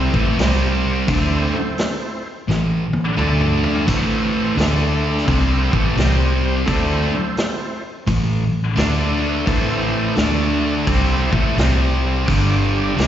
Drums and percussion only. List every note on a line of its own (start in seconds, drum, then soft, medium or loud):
0.14 kick medium
0.39 snare loud
0.39 open hi-hat medium
1.08 kick loud
1.08 open hi-hat medium
1.78 snare loud
1.78 open hi-hat medium
2.50 snare medium
2.93 high tom medium
3.19 mid tom medium
3.41 mid tom medium
3.64 floor tom medium
3.75 floor tom medium
3.88 kick loud
3.88 open hi-hat soft
3.88 splash medium
4.59 snare loud
4.59 open hi-hat medium
5.17 snare soft
5.28 kick loud
5.28 open hi-hat medium
5.73 kick loud
5.97 snare medium
5.97 open hi-hat medium
6.67 kick loud
6.67 open hi-hat medium
7.37 snare loud
7.37 open hi-hat medium
8.08 kick medium
8.08 open hi-hat medium
8.77 snare loud
8.77 open hi-hat medium
9.47 kick loud
9.47 open hi-hat soft
10.16 snare loud
10.16 open hi-hat soft
10.87 kick loud
10.87 open hi-hat soft
11.33 kick loud
11.58 snare loud
11.58 open hi-hat medium
12.28 kick loud
12.28 open hi-hat medium
12.98 snare loud
12.98 open hi-hat medium